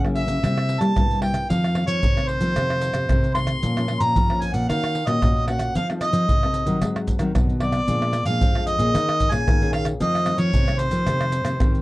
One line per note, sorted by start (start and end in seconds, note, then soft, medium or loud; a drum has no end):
0.00 0.24 C#3 medium
0.00 0.41 C#3 medium
0.00 0.39 F#3 medium
0.04 0.39 A#3 medium
0.04 0.40 E4 medium
0.04 pandeiro soft
0.04 tamborim medium
0.04 maracas soft
0.15 0.82 E5 loud
0.15 pandeiro medium
0.27 0.40 C#3 medium
0.27 pandeiro medium
0.27 maracas medium
0.43 0.77 C3 medium
0.43 0.94 C3 medium
0.43 0.79 G3 medium
0.43 0.79 A#3 medium
0.43 0.79 E4 medium
0.43 pandeiro medium
0.43 tamborim medium
0.43 maracas medium
0.43 surdo medium
0.58 pandeiro soft
0.58 tamborim medium
0.58 maracas soft
0.69 pandeiro medium
0.81 0.93 G3 medium
0.81 0.91 G3 medium
0.81 0.91 A#3 medium
0.81 0.91 E4 medium
0.81 1.21 A5 loud
0.81 pandeiro medium
0.81 tamborim medium
0.81 maracas medium
0.96 1.47 G2 medium
0.96 1.42 C3 medium
0.96 1.19 G3 medium
0.96 1.19 A#3 medium
0.96 1.19 E4 medium
0.96 pandeiro medium
0.96 tamborim medium
0.96 maracas medium
0.96 surdo loud
1.11 pandeiro soft
1.11 maracas soft
1.22 1.47 G3 medium
1.22 1.47 A#3 soft
1.22 1.47 E4 medium
1.22 1.47 G5 medium
1.22 pandeiro medium
1.22 tamborim medium
1.34 pandeiro medium
1.34 tamborim medium
1.34 maracas medium
1.49 2.00 F2 medium
1.49 1.72 D#3 medium
1.49 1.84 F3 medium
1.49 1.72 A3 medium
1.49 1.73 C4 medium
1.49 1.86 F5 medium
1.49 pandeiro medium
1.49 maracas medium
1.49 surdo medium
1.64 pandeiro soft
1.64 tamborim medium
1.64 maracas soft
1.75 2.12 D#3 medium
1.75 2.12 A3 medium
1.75 2.12 C4 medium
1.75 pandeiro medium
1.75 tamborim medium
1.87 2.00 F3 medium
1.87 2.29 C#5 medium
1.87 pandeiro medium
1.87 maracas medium
2.03 2.37 C3 medium
2.03 2.54 C3 medium
2.03 pandeiro medium
2.03 maracas medium
2.03 surdo loud
2.17 2.39 D#3 medium
2.17 2.39 A3 medium
2.17 2.39 C4 medium
2.17 pandeiro soft
2.17 tamborim medium
2.17 maracas soft
2.28 3.34 C5 loud
2.28 pandeiro medium
2.41 2.51 D#3 medium
2.41 2.53 F3 medium
2.41 2.51 A3 medium
2.41 2.51 C4 medium
2.41 pandeiro medium
2.41 maracas medium
2.56 3.07 F2 medium
2.56 2.90 C3 medium
2.56 2.91 D#3 soft
2.56 2.91 A3 soft
2.56 2.91 C4 medium
2.56 pandeiro medium
2.56 tamborim medium
2.56 maracas medium
2.56 surdo medium
2.70 pandeiro soft
2.70 tamborim medium
2.70 maracas soft
2.81 pandeiro medium
2.81 maracas medium
2.94 3.06 C3 medium
2.94 pandeiro medium
2.94 tamborim medium
2.94 maracas medium
3.09 3.54 C3 medium
3.09 3.60 C3 medium
3.09 3.25 D#3 medium
3.09 3.26 A3 medium
3.09 3.26 C4 medium
3.09 pandeiro medium
3.09 tamborim medium
3.09 maracas medium
3.09 surdo loud
3.24 pandeiro soft
3.24 maracas soft
3.34 3.60 D#3 medium
3.34 3.60 A3 soft
3.34 3.61 C4 medium
3.34 3.98 C6 loud
3.34 pandeiro medium
3.34 tamborim medium
3.47 pandeiro medium
3.47 tamborim medium
3.47 maracas medium
3.63 3.97 A#2 medium
3.63 4.14 A#2 medium
3.63 3.72 F3 medium
3.63 3.72 A#3 medium
3.63 3.73 C#4 medium
3.63 pandeiro medium
3.63 maracas medium
3.63 surdo medium
3.77 3.86 F3 medium
3.77 3.86 A#3 medium
3.77 3.86 C#4 medium
3.77 pandeiro soft
3.77 tamborim medium
3.77 maracas soft
3.88 4.14 F3 medium
3.88 4.15 A#3 medium
3.88 4.15 C#4 medium
3.88 pandeiro medium
3.88 tamborim medium
4.00 4.13 A#2 loud
4.00 4.43 A#5 loud
4.00 pandeiro medium
4.00 maracas medium
4.16 4.67 F2 medium
4.16 4.50 F3 medium
4.16 pandeiro medium
4.16 maracas medium
4.16 surdo loud
4.30 4.65 F3 medium
4.30 4.66 A#3 medium
4.30 4.66 C#4 medium
4.30 pandeiro soft
4.30 tamborim medium
4.30 maracas soft
4.41 4.54 G#5 medium
4.41 pandeiro medium
4.41 maracas medium
4.53 4.66 A#2 medium
4.53 4.68 F#5 medium
4.53 pandeiro medium
4.53 maracas medium
4.69 5.03 D#3 medium
4.69 5.20 D#3 medium
4.69 4.94 A#3 medium
4.69 4.95 C#4 medium
4.69 4.95 F#4 medium
4.69 5.08 F5 loud
4.69 pandeiro medium
4.69 tamborim medium
4.69 maracas medium
4.69 surdo medium
4.84 pandeiro soft
4.84 tamborim medium
4.84 maracas soft
4.95 pandeiro medium
5.07 5.19 A#2 medium
5.07 5.17 A#3 medium
5.07 5.17 C#4 medium
5.07 5.17 F#4 medium
5.07 5.47 D#5 loud
5.07 pandeiro medium
5.07 tamborim medium
5.07 maracas medium
5.22 5.68 A#2 medium
5.22 5.73 A#2 medium
5.22 5.45 A#3 medium
5.22 5.45 C#4 medium
5.22 5.45 F#4 medium
5.22 pandeiro medium
5.22 tamborim medium
5.22 maracas medium
5.22 surdo loud
5.36 pandeiro soft
5.36 maracas soft
5.47 5.73 A#3 medium
5.47 5.73 C#4 medium
5.47 5.73 F#4 medium
5.47 5.73 F#5 medium
5.47 pandeiro medium
5.47 tamborim medium
5.59 pandeiro medium
5.59 tamborim medium
5.59 maracas medium
5.75 6.09 F3 medium
5.75 6.26 F3 medium
5.75 5.84 C4 medium
5.75 5.84 D#4 soft
5.75 5.84 A4 medium
5.75 5.88 F5 medium
5.75 pandeiro medium
5.75 maracas medium
5.75 surdo medium
5.90 5.98 C4 medium
5.90 5.99 D#4 medium
5.90 5.99 A4 medium
5.90 pandeiro soft
5.90 tamborim medium
5.90 maracas soft
6.01 6.37 C4 medium
6.01 6.38 D#4 medium
6.01 6.38 A4 medium
6.01 7.04 D#5 medium
6.01 pandeiro medium
6.01 tamborim medium
6.01 maracas medium
6.13 6.25 F3 medium
6.13 pandeiro medium
6.13 maracas medium
6.28 6.62 C3 medium
6.28 6.80 C3 medium
6.28 pandeiro medium
6.28 maracas medium
6.28 surdo loud
6.43 6.65 C4 medium
6.43 6.65 D#4 medium
6.43 6.65 A4 medium
6.43 pandeiro soft
6.43 tamborim medium
6.43 maracas soft
6.54 pandeiro medium
6.54 maracas medium
6.66 6.78 D#3 medium
6.66 7.17 F#3 medium
6.66 7.17 C4 medium
6.66 7.17 D#4 medium
6.66 pandeiro medium
6.66 maracas medium
6.82 7.33 G#2 medium
6.82 7.16 G#3 medium
6.82 pandeiro medium
6.82 tamborim medium
6.82 maracas medium
6.82 surdo medium
6.96 pandeiro soft
6.96 tamborim medium
6.96 maracas soft
7.08 pandeiro medium
7.08 maracas medium
7.08 surdo medium
7.19 7.31 D#3 medium
7.19 7.30 F#3 medium
7.19 7.30 C4 medium
7.19 7.31 D#4 medium
7.19 pandeiro medium
7.19 tamborim medium
7.19 maracas medium
7.35 7.80 B2 medium
7.35 7.86 D#3 medium
7.35 7.51 F#3 medium
7.35 7.51 C4 medium
7.35 7.51 D#4 medium
7.35 pandeiro medium
7.35 tamborim medium
7.35 maracas medium
7.35 surdo loud
7.49 pandeiro soft
7.49 maracas soft
7.60 7.78 F#3 medium
7.60 7.79 C4 medium
7.60 7.79 D#4 medium
7.60 8.23 D5 medium
7.60 pandeiro medium
7.60 tamborim medium
7.72 pandeiro medium
7.72 tamborim medium
7.72 maracas medium
7.88 8.22 A#2 medium
7.88 8.39 A#2 medium
7.88 8.13 F3 medium
7.88 8.14 G#3 medium
7.88 8.14 D4 medium
7.88 pandeiro medium
7.88 maracas medium
7.88 surdo medium
8.02 pandeiro soft
8.02 tamborim medium
8.02 maracas soft
8.13 pandeiro medium
8.13 tamborim medium
8.13 maracas medium
8.25 8.38 A#2 loud
8.25 8.49 F3 medium
8.25 8.50 G#3 medium
8.25 8.50 D4 medium
8.25 8.64 F5 loud
8.25 pandeiro medium
8.25 maracas medium
8.41 8.92 F2 medium
8.41 8.75 F3 medium
8.41 pandeiro medium
8.41 maracas medium
8.41 surdo loud
8.55 8.78 F3 medium
8.55 8.78 G#3 medium
8.55 8.78 D4 medium
8.55 pandeiro soft
8.55 tamborim medium
8.55 maracas soft
8.67 9.33 D#5 loud
8.67 pandeiro medium
8.67 maracas medium
8.78 8.91 A#2 medium
8.78 9.29 A#3 medium
8.78 9.29 C#4 medium
8.78 9.29 G#4 medium
8.78 pandeiro medium
8.78 maracas medium
8.94 9.28 D#3 medium
8.94 9.45 D#3 medium
8.94 pandeiro medium
8.94 tamborim medium
8.94 maracas medium
8.94 surdo medium
9.09 pandeiro soft
9.09 tamborim medium
9.09 maracas soft
9.20 pandeiro medium
9.20 maracas medium
9.20 surdo medium
9.31 9.44 A#2 medium
9.31 9.55 A#3 medium
9.31 9.56 C#4 medium
9.31 9.56 G#4 medium
9.31 9.73 G#5 loud
9.31 pandeiro medium
9.31 tamborim medium
9.31 maracas medium
9.47 9.97 A#2 medium
9.47 9.92 D#3 medium
9.47 pandeiro medium
9.47 tamborim medium
9.47 maracas medium
9.47 surdo loud
9.61 9.97 A#3 medium
9.61 9.97 C#4 medium
9.61 9.97 G#4 medium
9.61 pandeiro soft
9.61 maracas soft
9.73 9.85 F5 medium
9.73 pandeiro medium
9.73 tamborim medium
9.85 pandeiro medium
9.85 tamborim medium
9.85 maracas medium
10.00 10.51 F2 medium
10.00 10.23 D#3 medium
10.00 10.34 F3 medium
10.00 10.23 A3 medium
10.00 10.23 C4 medium
10.00 10.40 D#5 loud
10.00 pandeiro medium
10.00 maracas medium
10.00 surdo medium
10.15 pandeiro soft
10.15 tamborim medium
10.15 maracas soft
10.26 10.62 D#3 medium
10.26 10.62 A3 medium
10.26 10.62 C4 medium
10.26 pandeiro medium
10.26 tamborim medium
10.38 10.50 F3 medium
10.38 10.80 C#5 medium
10.38 pandeiro medium
10.38 maracas medium
10.53 11.04 C3 medium
10.53 10.88 C3 medium
10.53 pandeiro medium
10.53 maracas medium
10.53 surdo loud
10.67 10.89 D#3 medium
10.67 10.90 A3 medium
10.67 10.90 C4 medium
10.67 pandeiro soft
10.67 tamborim medium
10.67 maracas soft
10.79 11.82 C5 medium
10.79 pandeiro medium
10.79 maracas medium
10.91 11.01 D#3 medium
10.91 11.03 F3 medium
10.91 11.01 A3 medium
10.91 11.01 C4 medium
10.91 pandeiro medium
10.91 maracas medium
11.06 11.57 F2 medium
11.06 11.41 C3 medium
11.06 11.32 D#3 medium
11.06 11.32 A3 medium
11.06 11.32 C4 medium
11.06 pandeiro medium
11.06 tamborim medium
11.06 maracas medium
11.06 surdo medium
11.21 pandeiro soft
11.21 tamborim medium
11.21 maracas soft
11.32 pandeiro medium
11.32 maracas medium
11.44 11.57 C3 medium
11.44 11.54 D#3 medium
11.44 11.55 A3 medium
11.44 11.55 C4 medium
11.44 pandeiro medium
11.44 tamborim medium
11.44 maracas medium
11.60 11.82 C3 medium
11.60 11.82 D#3 medium
11.60 11.82 A3 medium
11.60 11.82 C4 medium
11.60 pandeiro medium
11.60 tamborim medium
11.60 maracas medium
11.60 surdo loud
11.75 pandeiro soft
11.75 maracas soft